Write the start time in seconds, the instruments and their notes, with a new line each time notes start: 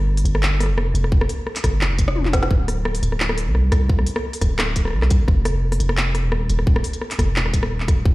Already playing: 808-style bass G1
0.17 open hi-hat
0.25 808-style bass G1, closed hi-hat
0.35 cross-stick
0.43 clap
0.60 cross-stick, open hi-hat
0.63 cross-stick
0.66 808-style bass F1, cross-stick
0.78 cross-stick
0.94 808-style bass F1, closed hi-hat
1.04 cross-stick
1.12 kick
1.21 cross-stick
1.29 open hi-hat
1.47 cross-stick
1.56 clap, open hi-hat
1.64 808-style bass G1, kick, cross-stick, closed hi-hat
1.81 808-style bass F1, clap
1.98 kick, closed hi-hat
2.08 cross-stick
2.16 high tom
2.25 clap, high tom
2.33 kick, cross-stick, snare, closed hi-hat
2.43 snare
2.51 808-style bass D1, kick
2.68 cross-stick, open hi-hat
2.85 cross-stick
2.95 open hi-hat
3.03 808-style bass D1, closed hi-hat
3.12 cross-stick
3.20 clap
3.29 cross-stick
3.38 open hi-hat
3.47 808-style bass C2
3.55 cross-stick
3.72 808-style bass C2, cross-stick, closed hi-hat
3.89 kick
3.99 cross-stick
4.06 open hi-hat
4.16 cross-stick
4.33 open hi-hat
4.41 808-style bass D1, kick, cross-stick, closed hi-hat
4.59 cross-stick, clap
4.76 kick, closed hi-hat
4.85 cross-stick
4.88 cross-stick
4.90 cross-stick
4.93 808-style bass C2, cross-stick
4.96 cross-stick
4.99 cross-stick
5.02 cross-stick, clap
5.10 kick, closed hi-hat
5.20 808-style bass F1
5.28 808-style bass F1, kick, cross-stick
5.45 cross-stick, open hi-hat
5.72 cross-stick, open hi-hat
5.80 808-style bass F1, closed hi-hat
5.89 cross-stick
5.97 clap
6.15 cross-stick, open hi-hat
6.24 808-style bass D#1
6.32 cross-stick
6.49 808-style bass D#1, closed hi-hat
6.59 cross-stick
6.67 kick
6.76 cross-stick
6.84 open hi-hat
6.93 closed hi-hat
7.01 cross-stick
7.11 clap, open hi-hat
7.19 808-style bass F1, kick, cross-stick, closed hi-hat
7.36 808-style bass D#1, clap
7.46 cross-stick
7.54 kick, closed hi-hat
7.63 cross-stick
7.80 clap
7.88 kick, cross-stick, closed hi-hat
8.05 808-style bass D#1, kick